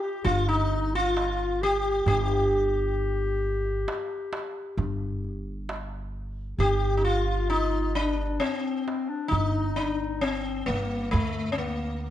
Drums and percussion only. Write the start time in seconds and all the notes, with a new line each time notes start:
0.25 darbuka dum
0.71 darbuka ka
1.17 darbuka tek
2.06 darbuka dum
3.43 darbuka ka
3.65 darbuka ka
3.88 darbuka tek
4.33 darbuka tek
4.78 darbuka dum
5.24 darbuka ka
5.69 darbuka tek
6.60 darbuka dum
8.19 darbuka ka
8.41 darbuka tek
8.88 darbuka tek
9.32 darbuka dum
10.23 darbuka tek
11.14 darbuka dum